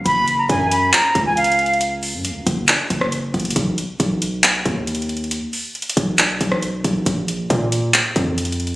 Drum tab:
HH |x-----------x-----------x-----------x-----------x-----------x-----------x---x---x---x---x---x---|x-----------o-----------x-----------x-----------x-----------x-----------x-----------x--x--x--x--|x-----------x-----------x-----------x-----------x-----------x-----------x---x---x---x---x---x---|x-----------o-----------x---x---x---x-----------x-----------x-----------x-----------x-----------|
CP |------------------------------------------------x-----------------------------------------------|------------------------------------------------x-----------------------------------------------|------------------------------------------------x-----------------------------------------------|------------------------------------------------x-----------------------------------------------|
SD |------------------------------------------------------------------------------------------------|------------------------------------------------------------------r-----------------------------|------------------------------------------------------------------------------------------------|------------------------------------------------------------------r-----------------------------|
BD |o-----------------------o-----------------------------------o-----------------------------------|------------------------------------o-----------------------o-----------------------o-----------|o-----------------------o-----------------------------------o-----------------------------------|------------------------------------o-----------------------o-----------------------o-----------|

HH |x-----------x-----------x-----------x-----------x-----------x-----------x---x---x---x---x-------|
CP |------------------------------------------------x-----------------------------------------------|
SD |------------------------------------------------------------------------------------------------|
BD |o-----------------------o-----------------------------------o-----------------------------------|